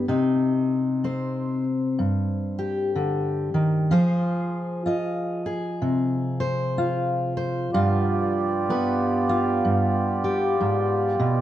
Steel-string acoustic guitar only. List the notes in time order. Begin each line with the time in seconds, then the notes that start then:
0.08 C3 D#4
1.04 C4 C5
1.99 G2
2.59 G4
2.96 D3
3.54 D#3
3.91 F3 F4 G#4 C5
4.86 F4 D#5
5.46 G#4
5.82 C3
6.40 C5
6.78 F4
7.37 C5
7.74 G2 F4
8.70 B3 B4
9.29 F4
9.65 G2
10.24 G4
10.61 G#2
11.20 B2